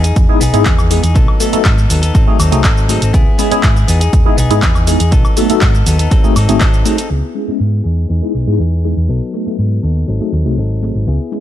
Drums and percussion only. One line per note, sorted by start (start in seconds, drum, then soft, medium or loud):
0.04 closed hi-hat medium
0.04 shaker soft
0.16 kick loud
0.16 closed hi-hat soft
0.16 shaker soft
0.41 open hi-hat loud
0.41 shaker medium
0.54 closed hi-hat medium
0.54 shaker soft
0.65 kick loud
0.65 clap loud
0.65 closed hi-hat soft
0.65 shaker soft
0.79 high woodblock medium
0.79 shaker soft
0.91 open hi-hat loud
0.91 shaker medium
1.04 closed hi-hat medium
1.04 shaker soft
1.16 kick loud
1.16 closed hi-hat medium
1.16 shaker soft
1.28 high woodblock medium
1.40 open hi-hat loud
1.40 shaker medium
1.53 closed hi-hat medium
1.53 shaker soft
1.65 kick loud
1.65 clap loud
1.65 closed hi-hat medium
1.65 shaker soft
1.78 shaker soft
1.90 open hi-hat loud
1.90 shaker medium
2.03 closed hi-hat medium
2.03 shaker soft
2.15 kick loud
2.15 closed hi-hat soft
2.15 shaker soft
2.40 open hi-hat loud
2.40 high woodblock medium
2.40 shaker medium
2.52 closed hi-hat medium
2.52 shaker soft
2.64 kick loud
2.64 clap loud
2.64 closed hi-hat soft
2.64 shaker soft
2.77 shaker soft
2.89 open hi-hat loud
2.89 shaker medium
3.02 closed hi-hat medium
3.02 shaker soft
3.14 kick loud
3.14 closed hi-hat medium
3.14 shaker soft
3.39 open hi-hat loud
3.39 shaker medium
3.52 closed hi-hat medium
3.52 shaker soft
3.63 kick medium
3.63 clap loud
3.63 closed hi-hat medium
3.63 shaker soft
3.76 shaker soft
3.88 open hi-hat loud
3.88 shaker medium
4.01 closed hi-hat medium
4.01 shaker soft
4.13 kick loud
4.13 closed hi-hat medium
4.13 shaker soft
4.38 open hi-hat loud
4.38 shaker medium
4.51 closed hi-hat medium
4.51 shaker soft
4.62 kick loud
4.62 clap loud
4.62 closed hi-hat medium
4.62 shaker soft
4.75 high woodblock medium
4.75 shaker soft
4.87 open hi-hat loud
4.87 shaker medium
5.00 closed hi-hat medium
5.00 shaker soft
5.12 kick loud
5.12 closed hi-hat medium
5.12 shaker soft
5.25 high woodblock medium
5.25 shaker soft
5.37 open hi-hat loud
5.37 shaker medium
5.50 closed hi-hat medium
5.50 shaker soft
5.61 kick loud
5.61 clap loud
5.61 closed hi-hat medium
5.61 shaker soft
5.75 shaker soft
5.86 open hi-hat loud
5.86 shaker medium
5.99 closed hi-hat medium
5.99 shaker soft
6.11 kick loud
6.11 closed hi-hat medium
6.11 shaker soft
6.24 shaker soft
6.36 open hi-hat loud
6.36 high woodblock medium
6.36 shaker medium
6.49 closed hi-hat medium
6.49 shaker soft
6.61 kick loud
6.61 clap loud
6.61 open hi-hat medium
6.61 shaker soft
6.74 shaker soft
6.86 open hi-hat loud
6.86 shaker medium
6.98 closed hi-hat medium
6.98 shaker soft
7.10 shaker soft
7.35 shaker medium
7.48 shaker soft
7.60 shaker soft
7.85 shaker medium
7.98 shaker soft
8.10 shaker soft
8.34 shaker medium
8.47 shaker soft
8.59 shaker soft
8.84 shaker medium
8.97 shaker soft
9.09 shaker soft
9.34 shaker medium
9.47 shaker soft
9.59 shaker soft
9.83 shaker medium
9.96 shaker soft
10.08 shaker soft
10.33 shaker medium
10.46 shaker soft
10.58 shaker soft
10.83 shaker medium
10.95 shaker soft
11.07 shaker soft
11.32 shaker medium